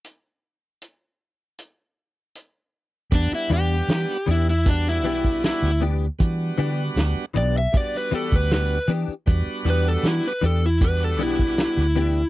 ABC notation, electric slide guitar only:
X:1
M:4/4
L:1/16
Q:1/4=78
K:Em
V:1 name="Electric slide guitar"
z16 | D E G4 E E D E3 E2 z2 | z6 d e d B A B B2 z2 | z2 B A E B A E B A E2 E4 |]